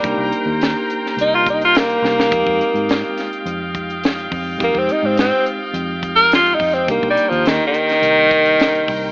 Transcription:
<<
  \new Staff \with { instrumentName = "Horn section" } { \time 4/4 \key c \minor \tempo 4 = 105 <bes' c'' g'' bes''>1 | <f' ees'' f''>1~ | <f' ees'' f''>1 | <bes' c'' bes''>1 | }
  \new Staff \with { instrumentName = "Tine electric piano" } { \time 4/4 \key c \minor <bes d' ees' g'>2.~ <bes d' ees' g'>8 <bes d' ees' g'>8 | <aes c' ees' g'>1 | <aes c' ees' g'>1 | <bes d' ees' g'>1 | }
  \new Staff \with { instrumentName = "Tenor saxophone" } { \time 4/4 \key c \minor g4 r4 ees'16 f'16 ees'16 f'16 bes4~ | bes2 r2 | bes16 c'16 ees'16 c'16 c'8 r8 \tuplet 3/2 { r4 bes'8 f'8 ees'8 c'8 } | \tuplet 3/2 { bes8 g8 f8 ees8 ees4~ } ees2 | }
  \new Staff \with { instrumentName = "Fingered electric bass" } { \clef bass \time 4/4 \key c \minor c,16 c,16 r16 ees,8 r8. c,4. c,8 | f,16 f,16 r16 aes,8 r8. f,4. f,8 | f,16 f,16 r16 aes,8 r8. f,4. f,8 | c,16 c,16 r16 ees,8 r8. c,4. c,8 | }
  \new DrumStaff \with { instrumentName = "Drums" } \drummode { \time 4/4 <hh bd>8 hh8 <hh sn>8 hh16 sn16 hh8 <hh bd>16 hh16 <hh sn>16 hh16 sn16 sn16 | <hh bd>16 bd16 hh16 hh16 <hh sn>8 <hh sn>16 hh16 hh8 <hh bd>16 hh16 <hh sn>16 hh16 <hho bd>8 | <hh bd>16 bd16 hh8 <hh sn>8 hh8 hh8 <hh bd>16 hh16 <hh sn>16 hh16 <hho bd>16 hh16 | <hh bd>16 bd16 hh16 hh16 <hh sn>8 hh16 <hh sn>16 hh8 <hh bd>16 hh16 <hh sn>16 hh16 <hho bd>8 | }
>>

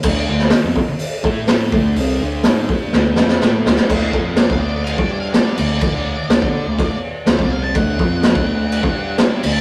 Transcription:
<<
  \new Staff \with { instrumentName = "Lead electric guitar" } { \time 4/4 \key g \major \tempo 4 = 124 r1 | r1 | r4 d''16 f''16 d''16 d''16 f''16 d''16 d''16 f''16 d''8 d''8~ | d''2~ d''8 r8 c''16 d''16 f''16 a''16 |
fis''2. r8 b''16 a''16 | }
  \new Staff \with { instrumentName = "Distorted electric guitar" } { \time 4/4 \key g \major <d a d'>8 <d a>8 r16 <f c'>16 r4 <a e' a'>4 <d a d'>8 | <c g c'>8 <d a d'>8 <gis ees' gis'>8 <g d' g'>8 <d a d'>8 <f c' f'>8 <a e' a'>8 <d a>16 <g d'>16 | <d a d'>8 <f c' f'>8. <d a d'>4 <g d' g'>4~ <g d' g'>16 <d a>8 | r16 <d a>8 r16 <d a>16 <d' a' d''>8 <d a>16 <d a>16 r8. <d a>16 <c g c'>8. |
<d a d'>8 <f c' f'>8. <d a d'>4 <g d' g'>4~ <g d' g'>16 <d a>8 | }
  \new Staff \with { instrumentName = "Picked electric bass" } { \clef bass \time 4/4 \key g \major d,8 d,8 r16 f,16 r4 a,4 d,8 | c,8 d,8 gis,8 g,8 d,8 f,8 a,8 d,16 g,16 | d,8 f,8. d,4 g,4~ g,16 d,8 | r16 d,8 r16 d,16 d8 d,16 d,16 r8. d,16 c,8. |
d,8 f,8. d,4 g,4~ g,16 d,8 | }
  \new DrumStaff \with { instrumentName = "Drums" } \drummode { \time 4/4 <cymc bd>8. sn16 <hho sn>8 bd8 hho8 bd8 <hho sn>8 bd8 | hho4 <hho sn>8 bd8 sn8 sn16 sn16 sn8 sn16 sn16 | <cymc bd>8 bd8 <cymc sn>16 bd8. cymc16 bd8. <cymc sn>8 cymc8 | <cymc bd>4 <cymc sn>16 bd8. <cymc bd>4 <cymc sn>16 bd8. |
<cymc bd>8 bd8 <cymc sn>16 bd8. cymc16 bd8. <cymc sn>8 cymc8 | }
>>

